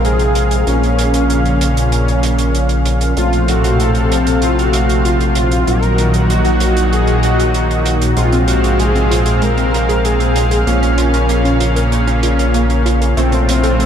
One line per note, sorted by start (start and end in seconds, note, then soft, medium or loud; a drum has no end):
0.00 0.64 A#1 medium
0.00 0.65 G#2 medium
0.00 0.65 C3 medium
0.00 0.63 G#3 medium
0.00 0.63 C4 medium
0.00 0.65 C4 medium
0.00 0.63 G#4 medium
0.00 0.63 F5 medium
0.00 3.13 F5 medium
0.00 impact medium
0.05 0.69 G#4 loud
0.05 closed hi-hat medium
0.19 closed hi-hat soft
0.35 closed hi-hat medium
0.51 closed hi-hat medium
0.67 3.14 A#1 medium
0.67 3.14 A#2 medium
0.67 3.15 C#3 medium
0.67 3.13 A#3 medium
0.67 3.13 C#4 medium
0.67 3.15 C#4 medium
0.67 1.57 C#4 medium
0.67 3.13 F4 medium
0.67 3.13 A#4 medium
0.67 closed hi-hat medium
0.83 closed hi-hat soft
0.99 closed hi-hat medium
1.14 closed hi-hat medium
1.30 closed hi-hat medium
1.45 closed hi-hat soft
1.61 closed hi-hat loud
1.77 closed hi-hat medium
1.92 closed hi-hat medium
2.08 closed hi-hat soft
2.23 closed hi-hat loud
2.39 closed hi-hat medium
2.55 closed hi-hat medium
2.69 closed hi-hat soft
2.86 closed hi-hat medium
3.01 closed hi-hat medium
3.17 5.64 A#1 medium
3.17 5.65 A2 medium
3.17 5.65 C3 medium
3.17 5.63 A3 medium
3.17 5.63 C4 medium
3.17 5.65 C4 medium
3.17 3.46 F4 medium
3.17 5.63 A4 medium
3.17 5.63 F5 medium
3.17 5.65 F5 medium
3.17 closed hi-hat medium
3.33 closed hi-hat soft
3.48 3.81 F#4 medium
3.48 closed hi-hat medium
3.64 closed hi-hat medium
3.80 3.94 A4 loud
3.80 closed hi-hat medium
3.95 4.44 A4 loud
3.95 closed hi-hat soft
4.12 closed hi-hat medium
4.27 closed hi-hat medium
4.42 4.57 F4 medium
4.42 closed hi-hat medium
4.58 5.06 F#4 loud
4.58 closed hi-hat soft
4.73 closed hi-hat medium
4.89 closed hi-hat medium
5.05 5.19 F4 medium
5.05 closed hi-hat medium
5.20 5.69 F4 medium
5.20 closed hi-hat soft
5.35 closed hi-hat loud
5.51 closed hi-hat medium
5.67 8.14 A#1 medium
5.67 8.15 A#2 medium
5.67 8.15 D#3 medium
5.67 8.13 F#3 medium
5.67 8.15 F#3 medium
5.67 8.13 A#3 medium
5.67 8.13 D#4 medium
5.67 8.15 D#4 medium
5.67 8.13 F#4 medium
5.67 8.15 F#4 medium
5.67 6.26 A#4 loud
5.67 closed hi-hat medium
5.83 closed hi-hat soft
5.98 closed hi-hat medium
6.14 closed hi-hat medium
6.30 6.44 F#4 loud
6.30 closed hi-hat medium
6.45 6.94 F#4 loud
6.45 closed hi-hat soft
6.60 closed hi-hat medium
6.77 closed hi-hat medium
6.92 7.24 G#4 loud
6.92 closed hi-hat medium
7.07 closed hi-hat soft
7.23 7.82 F#4 medium
7.23 closed hi-hat medium
7.40 closed hi-hat medium
7.54 closed hi-hat medium
7.71 closed hi-hat soft
7.86 closed hi-hat medium
8.02 closed hi-hat medium
8.17 10.64 A#1 medium
8.17 10.65 G#2 medium
8.17 10.65 C3 medium
8.17 8.28 G#3 medium
8.17 10.63 G#3 medium
8.17 10.63 C4 medium
8.17 10.65 C4 medium
8.17 8.49 F4 loud
8.17 10.63 G#4 medium
8.17 10.63 F5 medium
8.17 13.13 F5 medium
8.17 closed hi-hat medium
8.32 8.44 C4 medium
8.32 closed hi-hat soft
8.48 8.59 F4 medium
8.48 8.77 F#4 medium
8.48 closed hi-hat medium
8.64 8.79 G#4 medium
8.64 closed hi-hat medium
8.79 8.91 G#3 loud
8.79 9.44 G#4 loud
8.79 closed hi-hat medium
8.95 9.02 C4 loud
8.95 closed hi-hat soft
9.11 9.26 F4 loud
9.11 closed hi-hat medium
9.26 9.33 G#4 medium
9.26 closed hi-hat medium
9.42 9.49 G#3 loud
9.42 10.06 A#4 loud
9.42 closed hi-hat medium
9.57 9.69 C4 medium
9.57 closed hi-hat soft
9.73 9.84 F4 medium
9.73 closed hi-hat medium
9.89 9.96 G#4 loud
9.89 closed hi-hat medium
10.04 10.16 G#3 medium
10.04 10.69 G#4 loud
10.04 closed hi-hat medium
10.20 10.31 C4 loud
10.20 closed hi-hat soft
10.36 10.47 F4 medium
10.36 closed hi-hat medium
10.51 10.66 G#4 medium
10.51 closed hi-hat medium
10.67 13.14 A#1 medium
10.67 13.15 A#2 medium
10.67 13.15 C#3 medium
10.67 10.78 A#3 loud
10.67 13.13 A#3 medium
10.67 13.13 C#4 medium
10.67 13.15 C#4 medium
10.67 11.57 C#4 medium
10.67 13.13 F4 medium
10.67 13.13 A#4 medium
10.67 closed hi-hat medium
10.82 10.89 C#4 loud
10.82 closed hi-hat soft
10.98 11.13 F4 loud
10.98 closed hi-hat medium
11.14 11.20 A#4 medium
11.14 closed hi-hat medium
11.29 11.36 A#3 loud
11.29 closed hi-hat medium
11.45 11.56 C#4 medium
11.45 closed hi-hat soft
11.60 11.72 F4 medium
11.60 closed hi-hat medium
11.76 11.83 A#4 loud
11.76 closed hi-hat medium
11.92 12.03 A#3 medium
11.92 closed hi-hat medium
12.07 12.19 C#4 loud
12.07 closed hi-hat soft
12.23 12.34 F4 medium
12.23 closed hi-hat medium
12.39 12.54 A#4 medium
12.39 closed hi-hat medium
12.54 12.66 A#3 loud
12.54 closed hi-hat medium
12.70 12.77 C#4 loud
12.70 closed hi-hat soft
12.86 13.01 F4 loud
12.86 closed hi-hat medium
13.01 13.08 A#4 medium
13.01 closed hi-hat medium
13.17 13.86 A#1 medium
13.17 13.86 A2 medium
13.17 13.86 C3 medium
13.17 13.86 A3 medium
13.17 13.24 A3 loud
13.17 13.86 C4 medium
13.17 13.47 C4 loud
13.17 13.86 F4 medium
13.17 13.86 A4 medium
13.17 closed hi-hat medium
13.17 riser medium
13.32 13.44 C4 medium
13.32 closed hi-hat soft
13.48 13.86 C4 loud
13.48 13.59 F4 medium
13.48 closed hi-hat medium
13.64 13.70 A4 loud
13.64 closed hi-hat medium
13.79 13.86 A3 medium
13.79 closed hi-hat medium